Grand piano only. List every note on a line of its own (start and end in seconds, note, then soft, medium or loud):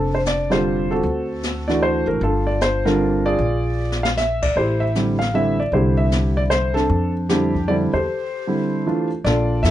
0.00 0.48 C4 soft
0.00 0.48 D4 soft
0.00 0.12 A4 medium
0.15 0.20 C5 medium
0.27 0.50 D5 medium
0.50 1.01 D3 medium
0.50 1.01 G3 soft
0.50 0.91 C4 soft
0.50 1.01 F4 medium
0.50 1.01 G4 soft
0.50 0.89 A4 soft
0.50 0.92 C5 medium
0.91 1.65 C4 soft
0.91 1.65 F#4 soft
0.91 1.71 A4 medium
1.68 2.19 E3 medium
1.68 2.19 A3 soft
1.68 2.19 D4 soft
1.68 2.19 F#4 medium
1.68 1.81 D5 medium
1.83 2.06 C5 medium
2.07 2.20 A#4 medium
2.23 2.82 D4 soft
2.23 2.82 F4 soft
2.23 2.48 A4 medium
2.47 2.61 D5 medium
2.62 2.87 C5 medium
2.85 3.36 D3 medium
2.85 3.36 G3 soft
2.85 3.36 C4 soft
2.85 3.36 D4 medium
2.85 3.25 F4 medium
2.85 3.26 A#4 medium
3.26 4.00 F4 medium
3.26 4.00 G#4 medium
3.26 3.99 D5 medium
4.03 4.08 F5 medium
4.17 4.40 E5 medium
4.43 4.55 D5 medium
4.57 4.95 E4 soft
4.57 5.17 G4 medium
4.57 4.82 C5 medium
4.80 4.93 E5 medium
4.95 5.18 D3 soft
4.95 5.18 G3 soft
4.95 5.18 C4 soft
4.95 5.18 E4 soft
5.19 5.32 F5 medium
5.34 5.56 D3 medium
5.34 5.56 G3 soft
5.34 5.57 C4 soft
5.34 5.57 E4 medium
5.34 5.60 E5 medium
5.60 5.72 D5 medium
5.73 6.82 D3 medium
5.73 6.82 G3 soft
5.73 6.74 C4 soft
5.73 6.82 E4 medium
5.73 6.34 G4 medium
5.73 5.96 C5 medium
5.97 6.11 E5 medium
6.37 6.42 D5 medium
6.50 6.74 C5 medium
6.74 7.25 C4 soft
6.74 7.26 D4 medium
6.74 7.11 A4 medium
7.29 7.52 D3 soft
7.29 7.52 G3 soft
7.29 7.52 C4 soft
7.29 7.90 D4 medium
7.29 7.52 E4 medium
7.29 7.66 G4 medium
7.68 7.91 D3 medium
7.68 7.91 G3 soft
7.68 7.91 C4 soft
7.68 7.91 E4 medium
7.68 7.74 D5 medium
7.94 9.08 G4 soft
7.94 9.07 A4 soft
7.94 9.07 C5 medium
8.47 8.85 D3 soft
8.47 8.85 G3 soft
8.47 8.85 C4 soft
8.47 8.85 E4 medium
8.86 9.09 E3 soft
8.86 9.09 A3 soft
8.86 9.09 D4 soft
8.86 9.09 F4 soft
9.24 9.62 D4 soft
9.24 9.62 F4 medium
9.24 9.62 A4 medium
9.24 9.61 D5 medium
9.63 9.71 E4 medium
9.63 9.71 A4 medium
9.63 9.71 E5 medium